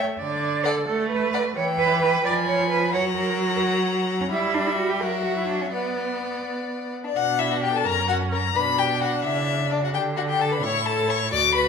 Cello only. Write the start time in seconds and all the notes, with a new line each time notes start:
0.19 D5
0.66 A4
0.88 A4
1.11 B4
1.56 C#5
1.79 B4
2.02 B4
2.25 D5
2.48 C#5
2.71 B4
2.94 C#5
3.16 A#4
4.21 C#4
4.32 E4
4.54 D4
4.67 E4
4.78 F#4
4.90 G4
5.00 A#4
5.24 F#4
5.37 E4
5.48 D4
5.61 C#4
5.73 B3
7.16 B2
7.86 F#2
8.56 B2
9.25 C#3
9.94 D3
10.63 A2
11.31 D2